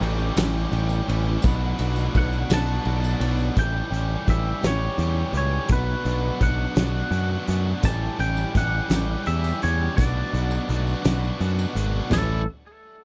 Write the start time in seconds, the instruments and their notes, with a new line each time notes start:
Already playing: glockenspiel C#6
0.00 picked electric bass A1, overdriven electric guitar A2 E3 G3 C#4 G4, ride, tambourine
0.19 tambourine
0.36 picked electric bass A1, overdriven electric guitar A2 E3 G3 C#4 G4, snare, ride, tambourine
0.71 picked electric bass A1, overdriven electric guitar A2 E3 G3 C#4 G4, ride, tambourine
0.89 tambourine
1.06 picked electric bass A1, overdriven electric guitar A2 E3 G3 C#4 G4, ride
1.42 picked electric bass B1, overdriven electric guitar B2 F#3 B3 D4 F#4, glockenspiel B5, kick, ride, tambourine
1.78 picked electric bass B1, overdriven electric guitar B2 F#3 B3 D4 F#4, ride, tambourine
1.96 tambourine
2.13 picked electric bass B1, overdriven electric guitar B2 F#3 B3 D4 F#4, kick, ride
2.18 clean electric guitar F#5
2.32 tambourine
2.49 picked electric bass B1, overdriven electric guitar B2 F#3 B3 D4 F#4, snare, ride, tambourine
2.54 clean electric guitar A5
2.85 picked electric bass B1, overdriven electric guitar B2 F#3 B3 D4 F#4, ride
3.04 tambourine
3.20 picked electric bass B1, overdriven electric guitar B2 F#3 B3 D4 F#4, ride
3.39 tambourine
3.56 picked electric bass A1, overdriven electric guitar A2 E3 G3 C#4 G4, clean electric guitar G5, kick, closed hi-hat
3.91 picked electric bass A1, overdriven electric guitar G3 C#4 G4, closed hi-hat
4.26 picked electric bass A1, overdriven electric guitar E3 G3 C#4 G4, kick, closed hi-hat
4.30 clean electric guitar E5
4.61 picked electric bass A1, overdriven electric guitar G3 C#4 G4, snare, closed hi-hat
4.66 clean electric guitar C#5
4.97 picked electric bass E2, overdriven electric guitar E3 G3 C#4 G4, closed hi-hat
5.33 picked electric bass C#2, overdriven electric guitar C#4 G4, closed hi-hat
5.37 overdriven electric guitar G3, clean electric guitar C#5
5.68 picked electric bass B1, overdriven electric guitar B2 F#3 B3 D4 F#4, kick, closed hi-hat
5.72 clean electric guitar B4
6.04 picked electric bass B1, overdriven electric guitar B3 D4 F#4, closed hi-hat
6.39 picked electric bass B1, overdriven electric guitar F#3 B3 D4 F#4, clean electric guitar F#5, kick, closed hi-hat
6.75 picked electric bass B1, overdriven electric guitar B3 D4 F#4, snare, closed hi-hat
7.11 picked electric bass F#2, overdriven electric guitar F#3 B3 D4 F#4, closed hi-hat
7.46 picked electric bass F#2, overdriven electric guitar B3 D4 F#4, closed hi-hat
7.80 picked electric bass A1, overdriven electric guitar A2 E3 G3 C#4 G4, kick, closed hi-hat, tambourine
7.85 clean electric guitar A5
8.17 picked electric bass A1, overdriven electric guitar G3 C#4 G4, clean electric guitar G5, closed hi-hat
8.37 tambourine
8.53 picked electric bass A1, overdriven electric guitar E3 G3 C#4 G4, kick, closed hi-hat, tambourine
8.57 clean electric guitar F#5
8.89 picked electric bass A1, overdriven electric guitar G3 C#4 G4, snare, closed hi-hat, tambourine
9.25 picked electric bass E2, overdriven electric guitar E3 G3 C#4 G4, clean electric guitar E5, closed hi-hat
9.44 tambourine
9.60 picked electric bass E2, overdriven electric guitar G3 C#4 G4, clean electric guitar C#5, closed hi-hat
9.95 picked electric bass B1, overdriven electric guitar B2 F#3 B3 D4 F#4, clean electric guitar D5, kick, closed hi-hat, tambourine
10.32 picked electric bass B1, overdriven electric guitar B3 D4 F#4, closed hi-hat
10.51 tambourine
10.67 picked electric bass B1, overdriven electric guitar F#3 B3 D4 F#4, closed hi-hat
10.87 tambourine
11.02 picked electric bass B1, overdriven electric guitar B3 D4 F#4, snare, closed hi-hat, tambourine
11.23 tambourine
11.37 picked electric bass F#2, overdriven electric guitar F#3 B3 D4 F#4, closed hi-hat
11.41 tambourine
11.59 tambourine
11.73 picked electric bass G#1, overdriven electric guitar B3 D4 F#4, closed hi-hat, tambourine
12.10 picked electric bass A1, overdriven electric guitar A2 E3 G3 C#4 E4, clean electric guitar A4, snare, floor tom, tambourine, crash